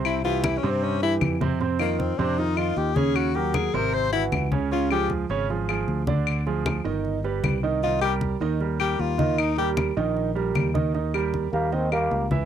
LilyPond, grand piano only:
\new Staff \with { instrumentName = "Grand piano" } { \time 4/4 \key ees \mixolydian \tempo 4 = 154 <c c' c''>8 <e e' g'>4 <c c' c''>4 <e e' g'>4 <c c' c''>8 | <c c' c''>8 <ees ees' f'>4 <c c' c''>8 <ees ees' f'>8 <ees ees' f'>4 <des des' des''>8~ | <des des' des''>8 <ges ges' bes'>4 <c c' c''>4 <e e' ges'>4 <des des' des''>8 | <des des' des''>8 <f f' aes'>4 <des des' des''>8 <f f' aes'>8 <f f' aes'>4 <d d' d''>8~ |
<d d' d''>8 <f f' aes'>4 <ees ees' ees''>4 <g g' b'>4 <dis dis' dis''>8 | <ees ees' ees''>8 <g g' bes'>4 <ees ees' ees''>8 <g g' bes'>8 <g g' bes'>4 <ees ees' ees''>8~ | <ees ees' ees''>8 <g g' bes'>4 <ees ees' ees''>4 <g g' bes'>4 <ees ees' ees''>8 | \key ees \major <ees ees' ees''>8 <g g' bes'>4 <g g' bes'>8 <ees ees' ees''>8 <g g' bes'>4 <fes fes' fes''>8 | }